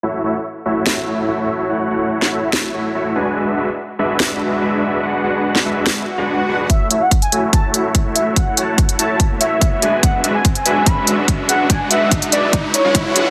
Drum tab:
HH |----------------|----------------|----------------|----------------|
SD |--------o-------|-----o--o-------|--------o-------|-----o--o-------|
BD |----------------|----------------|----------------|----------------|

HH |x-x-xxx-x-x-x-x-|x-x-xxx-x-x-x-x-|x-x-xxx-x-x-x-x-|x-x-xxx-x-x-x-x-|
SD |----------------|----------------|----------------|----------------|
BD |o---o---o---o---|o---o---o---o---|o---o---o---o---|o---o---o---o---|